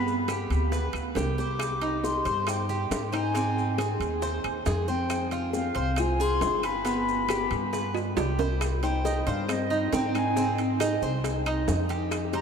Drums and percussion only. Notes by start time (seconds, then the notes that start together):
0.06 high bongo, maracas
0.28 high bongo, high timbale, low timbale, claves, maracas
0.51 high timbale, maracas
0.72 high bongo, maracas
0.93 high bongo, high timbale, claves, maracas
1.15 high bongo, low bongo, high timbale, low timbale, maracas
1.38 high bongo, maracas
1.59 high bongo, high timbale, claves, maracas
1.82 high timbale, maracas
2.04 high bongo, low timbale, maracas
2.26 high bongo, high timbale, maracas
2.47 high bongo, high timbale, claves, maracas
2.70 high bongo, maracas
2.91 high bongo, low bongo, high timbale, low timbale, maracas
3.13 high bongo, high timbale, claves, maracas
3.34 high bongo, high timbale, maracas
3.57 high bongo, maracas
3.78 high bongo, high timbale, low timbale, claves, maracas
4.01 high timbale, maracas
4.22 high bongo, maracas
4.44 high bongo, high timbale, claves, maracas
4.66 high bongo, low bongo, high timbale, low timbale, maracas
4.88 high bongo, maracas
5.10 high bongo, high timbale, claves, maracas
5.31 high timbale, maracas
5.53 high bongo, low timbale, maracas
5.75 high bongo, high timbale, maracas
5.96 high bongo, high timbale, claves, maracas
6.20 high bongo, maracas
6.41 high bongo, low bongo, high timbale, low timbale, maracas
6.63 high bongo, high timbale, claves, maracas
6.85 high bongo, high timbale, maracas
7.08 high bongo, maracas
7.29 high bongo, high timbale, low timbale, claves, maracas
7.51 high timbale, maracas
7.73 high bongo, maracas
7.94 high bongo, high timbale, claves, maracas
8.17 high bongo, low bongo, high timbale, maracas
8.39 high bongo, low timbale, maracas
8.61 high bongo, high timbale, claves, maracas
8.83 high timbale, maracas
9.05 high bongo, low timbale, maracas
9.27 high timbale, maracas
9.49 high bongo, high timbale, claves, maracas
9.72 maracas
9.93 high bongo, low bongo, high timbale, low timbale, maracas
10.15 high timbale, claves, maracas
10.37 high bongo, maracas
10.58 high bongo, high timbale, maracas
10.80 high bongo, high timbale, low timbale, claves, maracas
11.02 high bongo, maracas
11.24 high bongo, high timbale, maracas
11.46 high bongo, high timbale, claves, maracas
11.68 high bongo, low bongo, low timbale, maracas
11.90 high timbale, maracas
12.11 high bongo, high timbale, claves, maracas
12.33 high timbale, maracas